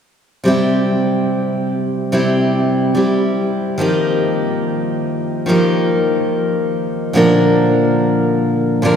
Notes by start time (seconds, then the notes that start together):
0.44 C3 G3 C4 E4
0.48 G4
2.12 C3 G3 C4 E4 G4
2.94 G3 C4 E4 G4
3.78 D#3 F3 A#3 D#4 G4
5.46 D#3 F3 A#3 D#4
5.50 G4
7.13 A#2 D3 F3 A#3 D4 A#4
8.82 A#2 D3 F3 A#3 D4 A#4